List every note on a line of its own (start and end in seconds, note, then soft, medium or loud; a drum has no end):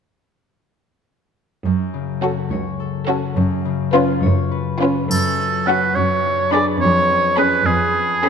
1.65 2.34 F#2 soft
1.65 3.35 F#2 soft
1.94 3.39 C#3 soft
2.22 2.44 C#4 soft
2.22 3.39 F#4 soft
2.22 2.44 F#4 soft
2.22 2.44 A4 soft
2.50 3.19 C#2 soft
2.50 4.21 C#5 soft
2.80 3.39 A4 soft
3.08 4.80 C#4 soft
3.08 3.29 C#4 soft
3.08 3.29 F#4 soft
3.08 3.29 A4 soft
3.36 4.06 F#2 medium
3.36 5.10 F#2 soft
3.65 5.12 C#3 soft
3.93 4.15 C#4 medium
3.93 4.15 F4 medium
3.93 5.12 F4 soft
3.93 4.15 B4 medium
4.23 4.93 F#2 medium
4.23 5.67 C#5 soft
4.51 5.12 B4 soft
4.81 5.38 C#4 soft
4.81 5.03 C#4 soft
4.81 5.03 F4 soft
4.81 5.03 B4 soft
5.10 5.79 F#2 soft
5.10 5.95 F#2 soft
5.10 5.68 A4 medium
5.10 triangle soft
5.39 5.99 C#4 soft
5.67 5.89 C#4 soft
5.67 6.84 F#4 soft
5.67 5.89 F#4 soft
5.67 5.97 B4 medium
5.67 5.99 C#5 soft
5.67 5.89 F#5 soft
5.96 6.65 F#2 soft
5.96 6.84 F#2 soft
5.96 6.52 C#5 medium
6.25 6.84 D4 soft
6.53 6.74 D4 soft
6.53 7.37 G#4 soft
6.53 6.75 G#4 soft
6.53 7.65 B4 soft
6.53 6.66 D5 medium
6.53 6.74 B5 soft
6.81 7.50 F2 medium
6.81 8.29 F2 soft
6.81 7.37 C#5 medium
7.10 8.29 C#4 soft
7.38 7.59 C#4 soft
7.38 8.29 G#4 soft
7.38 7.59 G#4 soft
7.38 7.68 B4 medium
7.38 7.59 B5 soft
7.66 8.29 F2 medium
7.66 8.29 G#4 medium
7.66 8.22 B4 soft
7.95 8.29 A4 soft
8.23 8.29 C#4 medium
8.23 8.29 G#4 medium
8.23 8.29 B4 soft
8.23 8.29 B5 soft